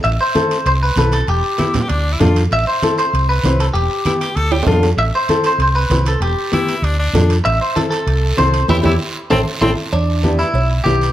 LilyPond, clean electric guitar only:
\new Staff \with { instrumentName = "Clean electric guitar" } { \time 4/4 \key a \minor \tempo 4 = 194 e''8 c''4. c''8 b'8 b'8 a'8 | g'4. r2 r8 | e''8 c''4 c''4 b'4 a'8 | g'4. r2 r8 |
e''8 c''4 c''8 c''8 b'4 a'8 | g'4. r2 r8 | e''8 c''8 a'8 a'4. c''4 | <e' g' b'>8 <e' g' b'>8 r4 <e' a' c''>8 r8 <e' a' c''>8 r8 |
d'4. e'4 r8 g'4 | }